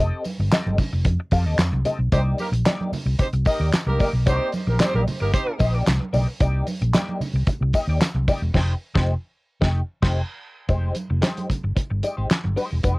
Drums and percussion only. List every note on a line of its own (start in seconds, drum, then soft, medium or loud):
0.25 open hi-hat medium
0.25 tambourine medium
0.25 high conga medium
0.52 snare loud
0.52 clap medium
0.52 closed hi-hat medium
0.52 tambourine medium
0.52 high conga medium
0.67 high conga medium
0.79 kick loud
0.79 open hi-hat medium
0.79 tambourine soft
0.79 low conga medium
1.05 kick loud
1.05 closed hi-hat medium
1.05 muted conga soft
1.05 low conga medium
1.31 kick medium
1.31 open hi-hat medium
1.31 tambourine medium
1.31 muted conga soft
1.59 snare loud
1.59 clap medium
1.59 closed hi-hat medium
1.59 tambourine medium
1.72 high conga medium
1.85 closed hi-hat medium
1.85 tambourine medium
1.85 muted conga soft
1.85 low conga medium
2.12 kick loud
2.12 closed hi-hat medium
2.12 tambourine medium
2.12 muted conga soft
2.38 open hi-hat medium
2.38 tambourine medium
2.38 high conga medium
2.54 closed hi-hat medium
2.66 snare loud
2.66 clap medium
2.66 closed hi-hat loud
2.66 tambourine medium
2.66 high conga medium
2.81 high conga loud
2.93 open hi-hat medium
2.93 tambourine soft
2.93 muted conga soft
2.93 low conga loud
3.19 kick loud
3.19 closed hi-hat medium
3.19 tambourine soft
3.19 low conga medium
3.33 closed hi-hat soft
3.45 kick medium
3.45 open hi-hat medium
3.45 tambourine medium
3.73 snare loud
3.73 clap medium
3.73 closed hi-hat medium
3.73 tambourine medium
3.86 high conga medium
3.99 kick loud
3.99 open hi-hat medium
3.99 tambourine medium
3.99 low conga medium
4.26 kick loud
4.26 closed hi-hat medium
4.26 tambourine medium
4.26 muted conga soft
4.52 open hi-hat medium
4.52 tambourine medium
4.52 muted conga soft
4.52 high conga medium
4.79 snare medium
4.79 clap medium
4.79 closed hi-hat loud
4.79 tambourine medium
4.79 muted conga soft
4.79 high conga medium
4.95 high conga medium
5.07 open hi-hat medium
5.07 tambourine soft
5.07 low conga loud
5.33 kick loud
5.33 closed hi-hat loud
5.33 muted conga soft
5.33 low conga medium
5.59 kick medium
5.59 open hi-hat medium
5.59 tambourine medium
5.59 muted conga soft
5.86 snare loud
5.86 clap medium
5.86 closed hi-hat loud
5.86 tambourine medium
5.86 muted conga soft
6.00 high conga medium
6.14 open hi-hat medium
6.14 tambourine medium
6.14 low conga medium
6.40 kick loud
6.40 closed hi-hat medium
6.40 tambourine medium
6.40 muted conga soft
6.67 open hi-hat medium
6.67 tambourine medium
6.67 high conga medium
6.82 closed hi-hat medium
6.94 snare loud
6.94 clap medium
6.94 closed hi-hat loud
6.94 tambourine loud
6.94 muted conga soft
6.94 high conga medium
7.09 high conga medium
7.21 open hi-hat medium
7.21 tambourine soft
7.21 low conga medium
7.47 kick medium
7.47 closed hi-hat loud
7.47 tambourine soft
7.47 muted conga soft
7.47 low conga medium
7.74 kick medium
7.74 open hi-hat medium
7.74 tambourine medium
7.74 muted conga soft
8.01 snare loud
8.01 clap medium
8.01 closed hi-hat medium
8.01 tambourine loud
8.15 high conga medium
8.28 kick loud
8.28 open hi-hat medium
8.28 tambourine medium
8.28 muted conga soft
8.28 low conga medium
8.55 kick loud
8.55 snare loud
8.55 crash medium
8.96 kick loud
8.96 snare loud
9.62 kick loud
9.62 snare loud
10.02 kick loud
10.02 snare loud
10.02 crash medium
10.69 kick loud
10.69 closed hi-hat medium
10.69 tambourine medium
10.69 muted conga soft
10.95 closed hi-hat medium
10.95 tambourine medium
10.95 high conga medium
11.22 snare loud
11.22 clap medium
11.22 closed hi-hat medium
11.22 tambourine medium
11.22 high conga medium
11.37 closed hi-hat medium
11.37 high conga medium
11.50 kick medium
11.50 closed hi-hat medium
11.50 tambourine soft
11.50 low conga medium
11.76 kick medium
11.76 closed hi-hat medium
11.76 tambourine soft
11.76 muted conga soft
11.76 low conga medium
12.03 closed hi-hat medium
12.03 tambourine medium
12.03 muted conga soft
12.30 snare loud
12.30 clap medium
12.30 closed hi-hat medium
12.30 tambourine medium
12.30 muted conga soft
12.44 high conga medium
12.57 open hi-hat medium
12.57 tambourine soft
12.83 kick loud
12.83 closed hi-hat medium
12.83 tambourine medium
12.83 muted conga soft